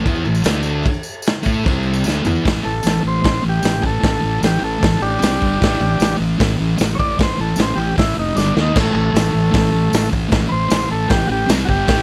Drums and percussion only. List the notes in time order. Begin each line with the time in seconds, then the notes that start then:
0.06 kick, tambourine, crash
0.15 tambourine
0.25 tambourine
0.35 tambourine
0.44 snare, tambourine, crash
0.54 tambourine
0.63 tambourine
0.83 kick, tambourine, crash
0.94 tambourine
1.03 tambourine
1.13 tambourine
1.22 tambourine
1.26 snare, crash
1.43 kick, tambourine
1.54 tambourine
1.63 kick, tambourine
1.68 crash
1.73 tambourine
1.83 tambourine
1.94 tambourine
2.04 tambourine
2.08 snare
2.25 floor tom, tambourine
2.35 tambourine
2.45 kick, snare, open hi-hat
2.83 open hi-hat, tambourine
2.87 snare
3.24 kick, snare, open hi-hat
3.63 snare, open hi-hat, tambourine
3.83 kick
4.03 kick, snare, open hi-hat
4.43 snare, open hi-hat, tambourine
4.83 kick, snare, open hi-hat
5.22 snare, open hi-hat, tambourine
5.42 kick
5.62 kick, snare, open hi-hat
6.00 snare, open hi-hat, tambourine
6.40 kick, snare, open hi-hat
6.78 snare, open hi-hat, tambourine
6.99 kick
7.19 kick, snare, open hi-hat
7.56 snare, open hi-hat, tambourine
7.98 kick, snare, open hi-hat
8.37 snare, tambourine
8.57 snare
8.76 kick, snare, crash
9.15 snare, open hi-hat, tambourine
9.53 kick, snare, open hi-hat
9.93 snare, open hi-hat, tambourine
10.13 kick
10.31 kick, snare, open hi-hat
10.70 snare, open hi-hat, tambourine
11.09 kick, snare, open hi-hat
11.49 snare, open hi-hat, tambourine
11.69 kick
11.88 kick, snare, open hi-hat